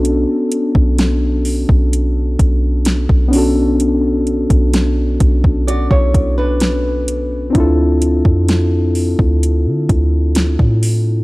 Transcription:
Already playing: B1 B3 C#4 D4 F#4 A4
0.05 closed hi-hat
0.52 closed hi-hat
0.75 B1, kick
0.98 snare, closed hi-hat
1.45 open hi-hat
1.69 B1, kick
1.93 closed hi-hat
2.39 B1, kick, closed hi-hat
2.85 snare, closed hi-hat
3.09 B1, kick
3.28 B3 C#4
3.33 D4 F#4, open hi-hat
3.38 A4
3.80 closed hi-hat
4.27 closed hi-hat
4.50 B1, kick, closed hi-hat
4.74 snare, closed hi-hat
5.20 B1, kick, closed hi-hat
5.44 kick
5.67 F#4 D5, closed hi-hat
5.91 B1 E4 C#5, kick
6.14 kick, closed hi-hat
6.38 D4 B4
6.60 snare, closed hi-hat
7.08 closed hi-hat
7.50 C4 D4
7.55 D2 E4 F4, kick, closed hi-hat
7.60 A4
8.02 closed hi-hat
8.25 F2, kick
8.48 snare, closed hi-hat
8.95 open hi-hat
9.19 D2, kick
9.43 closed hi-hat
9.66 D3
9.89 D2, kick, closed hi-hat
10.35 snare, closed hi-hat
10.59 A2, kick
10.83 open hi-hat

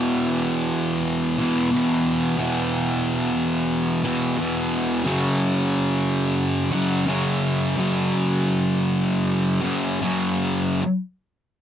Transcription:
Already playing: E2 B2 E3
1.38 E2 B2 E3
1.72 E2 B2 E3
2.37 E2 B2 E3
4.03 E2 B2 E3
4.37 E2 B2 E3
5.04 F#2 C#3 F#3
6.72 F#2 C#3 F#3
7.07 F#2 C#3 F#3
7.77 F#2 C#3 F#3
9.61 F#2 C#3 F#3
10.00 F#2 C#3 F#3

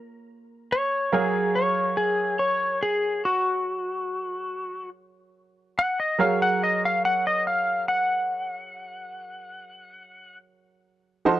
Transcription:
Already playing: A#3 F4 G#4 C#5 C6
0.72 C#5
1.12 F#3 G#4 A#4 C#5 F5
1.55 C#5
1.97 G#4
2.39 C#5
2.83 G#4
3.25 F#4
5.79 F#5
6.00 D#5
6.19 F#3 F#4 G#4 A#4 C#5 F5
6.42 F#5
6.64 D#5
6.85 F5
7.05 F#5
7.27 D#5
7.47 F5
7.88 F#5
11.25 F3 D#4 F#4 A4 C5

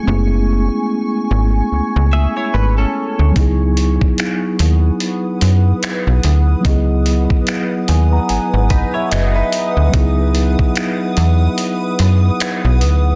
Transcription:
Already playing: A3 G#5 C#6
0.03 G#3 B3
0.07 F#1 A3 C#4 E4
0.12 G#4
1.31 G#1
1.72 C#2
1.96 C#2
2.13 G#4 E5
2.37 E4 C#5
2.54 G#1 B4
2.78 C#4 A4
3.19 D2
3.32 F#3 B3
3.36 C#2 D#4 E4 B4 F#5 D#6, kick, closed hi-hat
3.41 G#4
3.77 closed hi-hat
4.01 kick
4.18 finger snap, closed hi-hat
4.59 D#2, closed hi-hat
5.00 closed hi-hat
5.41 F#2, closed hi-hat
5.83 finger snap, closed hi-hat
6.07 B1
6.23 D2, closed hi-hat
6.61 F#3 B3
6.65 C#2 E4 D#5, kick, closed hi-hat
6.70 G#4
7.06 closed hi-hat
7.30 kick
7.47 finger snap, closed hi-hat
7.88 D#2 G#5, closed hi-hat
8.13 A#5
8.29 G#1 G#5, closed hi-hat
8.54 G#1 F#5
8.70 D#4 B4, kick, closed hi-hat
8.94 E4 C#5 E5
9.11 F#1 F#4 D#5, finger snap, closed hi-hat
9.35 D#4 B4 E5
9.52 closed hi-hat
9.77 D2
9.89 F#3 B3
9.94 C#2 D#4 E4, kick, closed hi-hat
9.98 G#4
10.35 closed hi-hat
10.59 kick
10.75 finger snap, closed hi-hat
11.17 E2, closed hi-hat
11.58 closed hi-hat
11.99 F#2, closed hi-hat
12.40 finger snap, closed hi-hat
12.65 B1
12.81 D2, closed hi-hat

